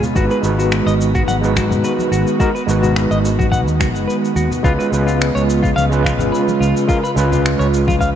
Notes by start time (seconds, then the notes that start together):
Already playing: C#3 G#3 B3 F4
0.03 low conga, shaker
0.15 G#1 D#3 G#3 D#4 F#4 B4, kick, shaker
0.31 B4, shaker
0.42 G#1 G#3 D#4 F#4 B4, shaker
0.59 F#4, shaker
0.72 finger snap, shaker
0.86 G#1 D#5, shaker
1.01 shaker
1.15 F#4, kick, shaker
1.27 G#1 F#5, high conga, shaker
1.41 G#3 D#4 F#4 B4, shaker
1.56 F#4, finger snap, kick, high conga, shaker
1.70 G#2, low conga, shaker
1.84 B4, shaker
1.99 high conga, shaker
2.12 G#1 F#4, shaker
2.27 shaker
2.39 G#3 D#4 F#4 A#4, kick, shaker
2.55 B4, shaker
2.67 G#1 G#3 D#4 F#4 B4, shaker
2.83 F#4, low conga, shaker
2.96 finger snap, shaker
3.11 G#1 D#5, shaker
3.25 shaker
3.39 F#4, kick, high conga, shaker
3.52 F#5, kick, shaker
3.67 D#2, shaker
3.80 F#4, finger snap, kick, high conga, shaker
3.95 F#1, shaker
4.08 B4, shaker
4.25 shaker
4.36 D#2 F#4, shaker
4.51 low conga, shaker
4.63 C#2 C#3 G#3 B3 C#4 F4 B4, kick, shaker
4.79 B4, shaker
4.91 C#2 G#3 C#4 F4 B4, shaker
5.07 F4, shaker
5.21 finger snap, shaker
5.35 C#2 C#5, shaker
5.50 shaker
5.63 F4, kick, shaker
5.76 C#2 F5, high conga, shaker
5.90 G#3 C#4 F4 B4, shaker
6.04 F4, finger snap, kick, high conga, shaker
6.19 G#1, low conga, shaker
6.32 B4, shaker
6.48 high conga, shaker
6.60 C#2 F4, shaker
6.77 shaker
6.88 G#3 C#4 F4 A#4, kick, shaker
7.04 B4, shaker
7.15 C#2 G#3 C#4 F4 B4, shaker
7.32 F4, low conga, shaker
7.46 finger snap, shaker
7.59 C#2 C#5, shaker
7.74 shaker
7.88 F4, kick, high conga, shaker
8.01 F5, kick, shaker